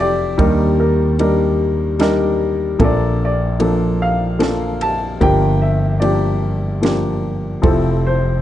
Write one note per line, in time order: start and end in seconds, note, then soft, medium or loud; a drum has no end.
0.00 0.35 F1 medium
0.00 0.35 F2 medium
0.00 0.40 F3 medium
0.00 0.40 C4 medium
0.00 0.41 E4 medium
0.00 0.80 G4 medium
0.00 0.40 A4 medium
0.00 0.41 C5 medium
0.00 0.82 D5 medium
0.00 0.40 E5 medium
0.38 2.75 D#2 medium
0.38 2.76 D#2 medium
0.38 2.75 D#3 medium
0.38 1.06 G3 medium
0.38 1.06 D4 medium
0.38 1.06 D#4 medium
0.38 0.78 A#4 medium
0.38 kick medium
0.38 ride soft
0.80 2.37 G4 soft
0.80 1.19 A#4 medium
1.19 1.86 G3 medium
1.19 1.87 D4 medium
1.19 1.87 D#4 medium
1.19 1.87 A#4 medium
1.19 ride soft
1.99 2.67 G3 medium
1.99 2.67 D4 medium
1.99 2.67 D#4 medium
1.99 2.68 A#4 medium
1.99 snare medium
1.99 ride soft
2.79 5.17 A#1 medium
2.79 5.17 A#2 medium
2.79 3.47 F3 medium
2.79 3.47 A#3 medium
2.79 3.47 D4 medium
2.79 3.48 A4 medium
2.79 kick medium
2.79 ride soft
2.84 3.19 D5 medium
3.25 4.05 D5 medium
3.59 4.27 F3 medium
3.59 4.28 A#3 medium
3.59 4.28 D4 medium
3.59 4.28 A4 medium
3.59 ride soft
4.02 4.84 F5 medium
4.39 5.07 F3 medium
4.39 5.08 A#3 medium
4.39 5.08 D4 medium
4.39 5.08 A4 medium
4.39 snare medium
4.39 ride medium
4.81 5.19 A5 medium
4.81 ride soft
5.21 7.59 G1 medium
5.21 7.60 G1 medium
5.21 7.59 G2 medium
5.21 5.89 F3 medium
5.21 5.89 A#3 medium
5.21 5.89 D4 medium
5.21 5.89 G4 medium
5.21 6.01 A#4 medium
5.21 5.63 G5 medium
5.21 kick medium
5.21 ride medium
5.62 6.03 E5 medium
6.00 6.69 F3 medium
6.00 6.69 A#3 medium
6.00 6.70 D4 medium
6.00 6.70 G4 medium
6.00 7.19 A#4 soft
6.00 7.18 D5 medium
6.00 ride soft
6.81 7.50 F3 medium
6.81 7.50 A#3 medium
6.81 7.50 D4 medium
6.81 7.51 G4 medium
6.81 snare medium
6.81 ride soft
7.62 8.42 F1 medium
7.62 8.42 F2 medium
7.62 8.30 F3 medium
7.62 8.31 C4 medium
7.62 7.65 E4 medium
7.62 8.32 A4 medium
7.62 kick medium
7.62 ride soft
7.66 8.42 E4 medium
8.07 8.42 C5 medium